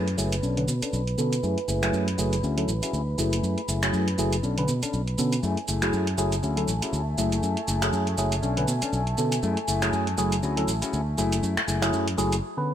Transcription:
Already playing: fingered electric bass F#2, string section B4 B5, downlifter
0.08 closed hi-hat
0.18 fingered electric bass F#1, tine electric piano F#3 A3 E4 G#4, shaker
0.32 closed hi-hat, shaker
0.43 fingered electric bass B1, clean electric guitar C#4 D4 A4, shaker
0.57 tine electric piano D3 B3 C#4 B4, closed hi-hat
0.68 fingered electric bass B2, shaker
0.82 clean electric guitar C#4 D4 A4, muted fingered electric bass stroke, closed hi-hat, shaker
0.93 fingered electric bass B1, shaker
1.07 closed hi-hat
1.18 fingered electric bass B2, tine electric piano D3 B3 C#4 A4, muted clean electric guitar stroke, shaker
1.33 closed hi-hat, shaker
1.43 fingered electric bass F#2, clean electric guitar A3 E4 G#4, shaker
1.58 closed hi-hat
1.68 fingered electric bass F#1, clean electric guitar A3 E4 G#4, shaker
1.82 tine electric piano F#3 A3 E4 G#4, finger snap, closed hi-hat, shaker
1.93 fingered electric bass F#2, shaker
2.08 closed hi-hat
2.18 fingered electric bass F#1, tine electric piano F#3 A3 E4 G#4, muted clean electric guitar stroke, shaker
2.33 closed hi-hat, shaker
2.43 fingered electric bass D2, clean electric guitar C#4 E4 F#4 G#4, shaker
2.57 tine electric piano F#3 C#4 E4 A4, closed hi-hat
2.68 fingered electric bass A1, shaker
2.82 clean electric guitar C#4 E4 F#4 G#4, muted fingered electric bass stroke, closed hi-hat, shaker
2.93 fingered electric bass D2, shaker
3.18 fingered electric bass F#1, tine electric piano F#3 A3 E4 G#4, clean electric guitar A3 E4 G#4, shaker
3.33 closed hi-hat, shaker
3.43 fingered electric bass F#2, shaker
3.58 closed hi-hat
3.68 fingered electric bass F#1, clean electric guitar A3 E4 G#4, shaker
3.82 tine electric piano F#3 A3 E4 G#4, finger snap, closed hi-hat, shaker
3.93 fingered electric bass F#2, shaker
4.08 closed hi-hat
4.18 fingered electric bass F#1, tine electric piano F#3 A3 E4 G#4, shaker
4.33 closed hi-hat, shaker
4.43 fingered electric bass B1, clean electric guitar C#4 D4 A4, shaker
4.58 tine electric piano D3 B3 C#4 B4, closed hi-hat
4.68 fingered electric bass B2, shaker
4.82 clean electric guitar C#4 D4 A4, muted fingered electric bass stroke, closed hi-hat, shaker
4.93 fingered electric bass B1, shaker
5.08 closed hi-hat
5.18 fingered electric bass B2, tine electric piano D3 B3 C#4 A4, muted clean electric guitar stroke, shaker
5.32 closed hi-hat, shaker
5.43 fingered electric bass F#2, clean electric guitar A3 E4 G#4, string section A3 G#5, shaker
5.57 closed hi-hat
5.68 fingered electric bass F#1, clean electric guitar A3 E4 G#4, shaker
5.82 tine electric piano F#3 A3 E4 G#4, finger snap, closed hi-hat, shaker
5.93 fingered electric bass F#2, shaker
6.07 closed hi-hat
6.18 fingered electric bass F#1, tine electric piano F#3 A3 E4 G#4, shaker
6.32 closed hi-hat, shaker
6.43 fingered electric bass D2, clean electric guitar C#4 E4 F#4 G#4, shaker
6.57 tine electric piano F#3 C#4 E4 A4, closed hi-hat
6.68 fingered electric bass A1, shaker
6.82 clean electric guitar C#4 E4 F#4 G#4, muted fingered electric bass stroke, closed hi-hat, shaker
6.93 fingered electric bass D2, shaker
7.18 fingered electric bass F#1, tine electric piano F#3 A3 E4 G#4, clean electric guitar A3 E4 G#4, shaker
7.32 closed hi-hat, shaker
7.43 fingered electric bass F#2, shaker
7.57 closed hi-hat
7.68 fingered electric bass F#1, clean electric guitar A3 E4 G#4, shaker
7.82 tine electric piano F#3 A3 E4 G#4, finger snap, closed hi-hat, shaker
7.93 fingered electric bass F#2, shaker
8.07 closed hi-hat
8.18 fingered electric bass F#1, tine electric piano F#3 A3 E4 G#4, muted clean electric guitar stroke, shaker
8.32 closed hi-hat, shaker
8.43 fingered electric bass B1, clean electric guitar C#4 D4 A4, shaker
8.57 tine electric piano D3 B3 C#4 B4, closed hi-hat
8.68 fingered electric bass B2, shaker
8.82 clean electric guitar C#4 D4 A4, muted fingered electric bass stroke, closed hi-hat, shaker
8.93 fingered electric bass B1, shaker
9.07 closed hi-hat
9.18 fingered electric bass B2, tine electric piano D3 B3 C#4 A4, muted clean electric guitar stroke, shaker
9.32 closed hi-hat, shaker
9.43 fingered electric bass F#2, clean electric guitar A3 E4 G#4, shaker
9.57 closed hi-hat
9.68 fingered electric bass F#1, clean electric guitar A3 E4 G#4, shaker
9.82 tine electric piano F#3 A3 E4 G#4, finger snap, closed hi-hat, shaker
9.93 fingered electric bass F#2, shaker
10.07 closed hi-hat
10.18 fingered electric bass F#1, tine electric piano F#3 A3 E4 G#4, muted clean electric guitar stroke, shaker
10.32 closed hi-hat, shaker
10.43 fingered electric bass D2, clean electric guitar C#4 E4 F#4 G#4, shaker
10.57 tine electric piano F#3 C#4 E4 A4, closed hi-hat
10.68 fingered electric bass A1, shaker
10.82 clean electric guitar C#4 E4 F#4 G#4, muted fingered electric bass stroke, closed hi-hat, shaker
10.93 fingered electric bass D2, shaker
11.18 fingered electric bass F#1, tine electric piano F#3 A3 E4 G#4, clean electric guitar A3 E4 G#4, shaker
11.32 closed hi-hat, shaker
11.43 fingered electric bass F#2, shaker
11.57 finger snap, closed hi-hat
11.68 fingered electric bass F#1, clean electric guitar A3 E4 G#4, shaker
11.82 tine electric piano F#3 A3 E4 G#4, finger snap, closed hi-hat, shaker
11.93 fingered electric bass F#2, shaker
12.08 closed hi-hat
12.17 fingered electric bass F#1, tine electric piano F#3 A3 E4 G#4, muted clean electric guitar stroke, shaker
12.32 closed hi-hat, shaker
12.57 tine electric piano D3 B3 C#4 B4

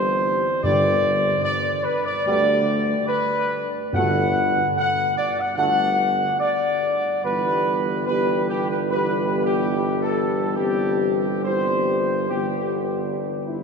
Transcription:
Already playing: tuba G1, trombone section E3 G3, french horn section C4 G4, trumpet section C5
0.62 tuba G1, timpani G2, trombone section D3 G3, french horn section B3 G4, trumpet section D5
1.44 trumpet section D5
1.84 trumpet section B4
2.05 trumpet section D5
2.26 tuba D2, trombone section D3 G3, french horn section B3 G4, trumpet section D5
3.08 trumpet section B4
3.93 tuba G1, timpani G2, trombone section D3 A3, french horn section D4 F#4, trumpet section F#5
4.77 trumpet section F#5
5.17 trumpet section D5
5.39 trumpet section F#5
5.57 tuba G1, trombone section D3 A3, french horn section D4 F#4, trumpet section F#5
6.40 trumpet section D5
7.24 tuba G1, trombone section E3 G3, french horn section B3 G4, trumpet section B4
8.06 trombone section E3 G3, french horn section B3 G4, trumpet section B4
8.49 trumpet section G4
8.69 trumpet section B4
8.91 trombone section E3 G3, french horn section B3 G4, trumpet section B4
9.46 trumpet section G4
10.02 trumpet section A4
10.56 trombone section E3 G3, french horn section C4 G4, trumpet section G4
11.44 trombone section E3 G3, french horn section C4 G4, trumpet section C5
12.30 tuba G1, trombone section D3 G3, french horn section B3 G4, trumpet section G4
13.18 french horn section D4
13.47 french horn section E4

